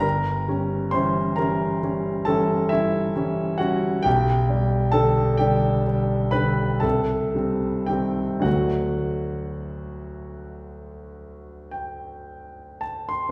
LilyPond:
<<
  \new Staff \with { instrumentName = "Grand piano" } { \time 9/8 \key d \mixolydian \tempo 4. = 42 << { bes''4 c'''8 bes''4 a''8 e''4 fis''8 | g''4 a''8 g''4 b''8 a''4 g''8 | fis''2. g''4 a''16 c'''16 | } \\ { bes'4 c''8 bes'4 a'8 e'4 fis'8 | g'4 a'8 g'4 b'8 a'4 g'8 | fis'1 r8 | } >> }
  \new Staff \with { instrumentName = "Grand piano" } { \clef bass \time 9/8 \key d \mixolydian g,,8 <g des'>8 <e g des'>8 <e g des'>8 <g des'>8 <e g des'>8 <g des'>8 <e g des'>8 <g des'>8 | b,,8 <g d'>8 <d g d'>8 <d g d'>8 <g d'>8 <d g d'>8 c,8 <g c'>8 <ees g c'>8 | <d, d fis a>1~ <d, d fis a>8 | }
>>